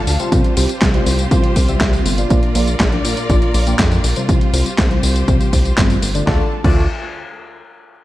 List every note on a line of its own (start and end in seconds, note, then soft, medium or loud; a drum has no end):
0.00 0.17 D3 medium
0.00 0.30 D3 medium
0.00 0.17 A3 medium
0.00 0.17 D4 medium
0.00 0.30 D4 medium
0.00 0.17 F4 medium
0.00 0.30 A4 medium
0.00 0.17 F5 medium
0.00 0.30 F5 medium
0.00 0.30 A5 medium
0.07 0.17 D2 medium
0.07 open hi-hat medium
0.07 tambourine medium
0.20 0.54 C3 medium
0.20 0.54 G3 medium
0.20 0.54 C4 medium
0.20 0.54 F4 medium
0.20 0.54 C5 medium
0.20 closed hi-hat soft
0.20 tambourine soft
0.32 0.42 C2 medium
0.32 6.23 F4 medium
0.32 2.28 G4 medium
0.32 2.28 C5 medium
0.32 kick loud
0.32 closed hi-hat medium
0.32 tambourine soft
0.44 closed hi-hat soft
0.57 0.67 C2 loud
0.57 0.71 C3 medium
0.57 0.71 G3 medium
0.57 0.71 C4 medium
0.57 0.71 F4 medium
0.57 0.71 C5 medium
0.57 open hi-hat loud
0.57 tambourine medium
0.69 closed hi-hat soft
0.69 tambourine soft
0.82 1.02 C2 loud
0.82 kick loud
0.82 snare loud
0.82 clap loud
0.82 closed hi-hat medium
0.82 tambourine soft
0.94 1.28 C3 medium
0.94 1.28 G3 medium
0.94 1.28 C4 medium
0.94 1.28 F4 medium
0.94 1.28 C5 medium
0.94 closed hi-hat soft
1.06 1.27 C2 medium
1.06 open hi-hat medium
1.06 tambourine medium
1.19 closed hi-hat soft
1.19 tambourine soft
1.31 1.41 C2 loud
1.31 1.53 C3 medium
1.31 1.53 G3 medium
1.31 1.53 C4 medium
1.31 1.53 F4 medium
1.31 1.53 C5 medium
1.31 kick loud
1.31 closed hi-hat medium
1.31 tambourine soft
1.44 closed hi-hat soft
1.56 1.76 C2 medium
1.56 kick medium
1.56 open hi-hat medium
1.56 tambourine medium
1.68 2.15 C3 medium
1.68 2.15 G3 medium
1.68 2.15 C4 medium
1.68 2.15 F4 medium
1.68 2.15 E5 medium
1.68 closed hi-hat soft
1.68 tambourine soft
1.81 2.01 C2 medium
1.81 kick loud
1.81 snare loud
1.81 clap loud
1.81 closed hi-hat medium
1.81 tambourine soft
1.93 closed hi-hat soft
1.93 tambourine soft
2.05 2.26 G1 medium
2.05 open hi-hat medium
2.05 tambourine medium
2.18 2.52 A#2 medium
2.18 2.52 A#3 medium
2.18 2.52 D4 medium
2.18 2.52 F4 medium
2.18 2.52 D5 medium
2.18 closed hi-hat soft
2.18 tambourine soft
2.30 2.40 A#1 loud
2.30 4.27 A#4 medium
2.30 4.27 D5 medium
2.30 kick loud
2.30 closed hi-hat medium
2.30 tambourine soft
2.43 closed hi-hat soft
2.55 2.75 A#1 loud
2.55 2.69 A#2 medium
2.55 2.69 A#3 medium
2.55 2.69 D4 medium
2.55 2.69 F4 medium
2.55 2.69 D5 medium
2.55 open hi-hat loud
2.55 tambourine medium
2.68 closed hi-hat soft
2.68 tambourine soft
2.80 3.00 A#1 loud
2.80 kick loud
2.80 snare loud
2.80 clap loud
2.80 closed hi-hat medium
2.80 tambourine soft
2.92 3.27 A#2 medium
2.92 3.27 A#3 medium
2.92 3.27 D4 medium
2.92 3.27 F4 medium
2.92 3.27 D5 medium
2.92 closed hi-hat soft
3.05 3.15 A#1 medium
3.05 open hi-hat medium
3.05 tambourine medium
3.17 closed hi-hat soft
3.17 tambourine soft
3.30 3.40 A#1 medium
3.30 3.52 A#2 medium
3.30 3.52 A#3 medium
3.30 3.52 D4 medium
3.30 3.52 F4 medium
3.30 3.52 D5 medium
3.30 kick loud
3.30 closed hi-hat medium
3.30 tambourine soft
3.42 closed hi-hat soft
3.54 3.75 A#1 medium
3.54 open hi-hat medium
3.54 tambourine medium
3.67 4.13 A#2 medium
3.67 4.13 A#3 medium
3.67 4.13 D4 medium
3.67 4.13 F4 medium
3.67 4.13 G5 medium
3.67 closed hi-hat soft
3.67 tambourine soft
3.79 3.99 F2 loud
3.79 kick loud
3.79 snare loud
3.79 clap loud
3.79 closed hi-hat medium
3.79 tambourine soft
3.92 closed hi-hat soft
3.92 tambourine soft
4.04 4.14 A#1 medium
4.04 open hi-hat medium
4.04 tambourine medium
4.16 4.51 C3 medium
4.16 4.51 G3 medium
4.16 4.51 C4 medium
4.16 4.51 F4 medium
4.16 4.51 C5 medium
4.16 closed hi-hat soft
4.16 tambourine soft
4.29 4.39 C2 medium
4.29 6.25 G4 medium
4.29 6.25 C5 medium
4.29 kick loud
4.29 closed hi-hat medium
4.29 tambourine soft
4.41 closed hi-hat soft
4.54 4.64 C2 loud
4.54 4.67 C3 medium
4.54 4.67 G3 medium
4.54 4.67 C4 medium
4.54 4.67 F4 medium
4.54 4.67 C5 medium
4.54 open hi-hat loud
4.54 tambourine medium
4.66 closed hi-hat soft
4.66 tambourine soft
4.78 4.99 C2 loud
4.78 kick loud
4.78 snare loud
4.78 clap loud
4.78 closed hi-hat medium
4.78 tambourine soft
4.91 5.25 C3 medium
4.91 5.25 G3 medium
4.91 5.25 C4 medium
4.91 5.25 F4 medium
4.91 5.25 C5 medium
4.91 closed hi-hat soft
5.03 5.23 C2 medium
5.03 open hi-hat medium
5.03 tambourine medium
5.16 closed hi-hat soft
5.16 tambourine soft
5.28 5.38 C2 loud
5.28 5.50 C3 medium
5.28 5.50 G3 medium
5.28 5.50 C4 medium
5.28 5.50 F4 medium
5.28 5.50 C5 medium
5.28 kick loud
5.28 closed hi-hat medium
5.28 tambourine soft
5.41 closed hi-hat soft
5.41 tambourine soft
5.53 5.73 C2 medium
5.53 kick medium
5.53 open hi-hat medium
5.53 tambourine medium
5.65 closed hi-hat soft
5.65 tambourine soft
5.77 5.98 G1 loud
5.77 6.00 C3 loud
5.77 6.00 G3 medium
5.77 6.00 C4 medium
5.77 6.00 F4 medium
5.77 6.00 C5 loud
5.77 kick loud
5.77 snare loud
5.77 clap loud
5.77 closed hi-hat medium
5.77 tambourine soft
5.90 closed hi-hat soft
5.90 tambourine soft
6.02 6.23 G1 medium
6.02 open hi-hat medium
6.02 tambourine medium
6.15 6.49 D3 loud
6.15 6.26 A3 medium
6.15 6.26 D4 medium
6.15 6.26 F4 medium
6.15 6.26 D5 loud
6.15 closed hi-hat soft
6.15 tambourine soft
6.27 6.41 D2 medium
6.27 6.50 D3 medium
6.27 6.41 A3 medium
6.27 6.41 D4 medium
6.27 6.50 D4 medium
6.27 6.41 F4 medium
6.27 6.50 F4 medium
6.27 6.50 A4 medium
6.27 6.41 D5 loud
6.27 6.50 A5 medium
6.27 kick loud
6.27 snare medium
6.64 6.87 D2 loud
6.64 6.83 A3 medium
6.64 6.83 D4 medium
6.64 6.83 F4 medium
6.64 6.83 D5 medium
6.64 kick loud
6.64 crash medium